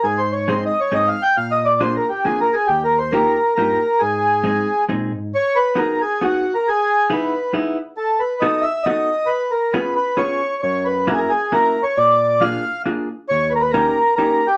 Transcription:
<<
  \new Staff \with { instrumentName = "Accordion" } { \time 3/4 \key aes \major \tempo 4 = 136 \tuplet 3/2 { aes'8 c''8 des''8 c''8 ees''8 des''8 ees''8 f''8 g''8 } | \tuplet 3/2 { f''8 ees''8 d''8 c''8 bes'8 g'8 aes'8 bes'8 aes'8 } | \tuplet 3/2 { g'8 bes'8 c''8 } bes'4 bes'4 | aes'2 r4 |
\key gis \minor cis''8 b'8 ais'8 gis'8 \tuplet 3/2 { fis'4 ais'8 } | gis'4 b'4 r4 | a'8 b'8 dis''8 e''8 dis''4 | b'8 ais'8 b'8 b'8 cis''4 |
cis''8 b'8 ais'32 gis'32 ais'16 gis'8 \tuplet 3/2 { ais'4 cis''8 } | d''4 eis''4 r4 | cis''8 b'32 ais'32 b'16 ais'4 \tuplet 3/2 { ais'4 g'8 } | }
  \new Staff \with { instrumentName = "Hollow-body jazz guitar" } { \time 3/4 \key aes \major r4 <aes c' ees' aes'>8 r8 <aes c' ees' aes'>8 r8 | r4 <bes d' f' aes'>8 r8 <bes d' f' aes'>8 r8 | r4 <bes ees' f' g'>8 r8 <bes ees' f' g'>8 r8 | r4 <aes c' ees' aes'>8 r8 <aes c' ees' aes'>8 r8 |
\key gis \minor r4 <b dis' fis' gis'>8 r8 <b dis' fis' gis'>8 r8 | r4 <b dis' e' gis'>8 r8 <b dis' e' gis'>8 r8 | r4 <b dis' fis' a'>8 r8 <b dis' fis' a'>8 r8 | r4 <b cis' eis' gis'>8 r8 <b cis' eis' gis'>8 r8 |
r4 <ais cis' e' fis'>8 r8 <ais cis' e' fis'>8 r8 | r4 <ais d' eis' gis'>8 r8 <ais d' eis' gis'>8 r8 | r4 <ais cis' dis' g'>8 r8 <ais cis' dis' g'>8 r8 | }
  \new Staff \with { instrumentName = "Tine electric piano" } { \clef bass \time 3/4 \key aes \major aes,2 aes,8 r8 | bes,2 f,8 r8 | ees,2 g,8 r8 | aes,2 bes,8 aes,8 |
\key gis \minor r2. | r2. | r2. | r2. |
fis,2 r4 | ais,2 r4 | dis,2 r4 | }
>>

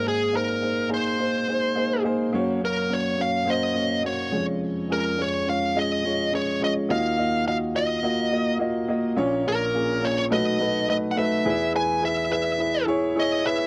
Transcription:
<<
  \new Staff \with { instrumentName = "Lead electric guitar" } { \time 4/4 \key des \major \tempo 4 = 105 aes'8 bes'4 c''2 r8 | r8 bes'8 des''8 f''8 ees''4 des''8. r16 | r8 bes'8 des''8 f''8 ees''4 des''8 ees''8 | f''4 f''8 ees''4. r4 |
r8 bes'4 des''16 des''16 ees''4 ees''16. ges''32 fes''8~ | \key e \major fes''8 gis''8 e''8 e''4 r8 dis''8 e''8 | }
  \new Staff \with { instrumentName = "Upright piano" } { \time 4/4 \key des \major <bes ees' aes' c''>8 <bes ees' aes' c''>8 <bes ees' aes' c''>8 <bes ees' aes' c''>8 <bes ees' aes' c''>8 <bes ees' aes' c''>8 <bes ees' aes' c''>8 <bes ees' aes' c''>8 | <bes des' ges' des''>8 <bes des' ges' des''>8 <bes des' ges' des''>8 <bes des' ges' des''>8 <bes des' ges' c''>8 <bes des' ges' des''>8 <bes des' ges' des''>8 <aes des' f' des''>8~ | <aes des' f' des''>8 <aes des' f' aes'>8 <aes des' f' des''>8 <aes des' f' des''>8 <aes des' f' ees''>8 <aes des' f' des''>8 <aes des' f' des''>8 <aes des' f' des''>8 | <bes f' ges' ees''>8 <bes f' ges' ees''>8 <bes f' ges' ees''>8 <bes f' ges' ees''>8 <bes f' ges' ees''>8 <bes f' ges' ees''>8 <bes f' ges' ees''>8 <bes f' ges' ees''>8 |
<bes des' f' des''>8 <bes des' f' bes'>8 <bes des' f' aes'>8 <bes des' f' des''>8 <a ees' ges' ces''>8 <a ees' ges' ces''>8 <a ees' ges' ces''>8 <a ees' ges' ces''>8 | \key e \major <e' gis' b'>8 <e' gis' b'>8 <e' gis' b'>8 <e' gis' b'>8 <e' gis' b'>8 <e' gis' cis''>8 <e' gis' cis''>8 <e' gis' b'>8 | }
  \new Staff \with { instrumentName = "Upright piano" } { \clef bass \time 4/4 \key des \major <aes,, aes,>2.~ <aes,, aes,>8 r8 | <ges,, ges,>2.~ <ges,, ges,>8 <f,, f,>8~ | <f,, f,>2.~ <f,, f,>8 r8 | <ees, ees>1 |
<bes,, bes,>2 <ces, ces>2 | \key e \major <e, e>1 | }
>>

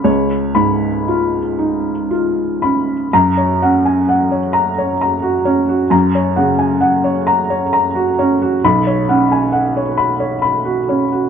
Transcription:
\new Staff \with { instrumentName = "Felt piano" } { \time 6/8 \key fis \major \tempo 4. = 44 << { <cis, cis'>8 gis,4 r4 cis'8 | <fis, ais''>8 cis'4 r4 cis'8 | fis,8 cis4 r4 cis'8 | <b,, b''>8 cis'4 r4 cis'8 | } \\ { <cis'' b''>8 b''8 eis'8 dis'8 eis'8 b''8 | r16 cis''16 fis''16 gis''16 fis''16 cis''16 ais''16 cis''16 ais''16 fis'16 cis''16 fis'16 | ais''16 cis''16 fis''16 gis''16 fis''16 cis''16 ais''16 cis''16 ais''16 fis'16 cis''16 fis'16 | r16 cis''16 fis''16 gis''16 fis''16 cis''16 b''16 cis''16 b''16 fis'16 cis''16 fis'16 | } >> }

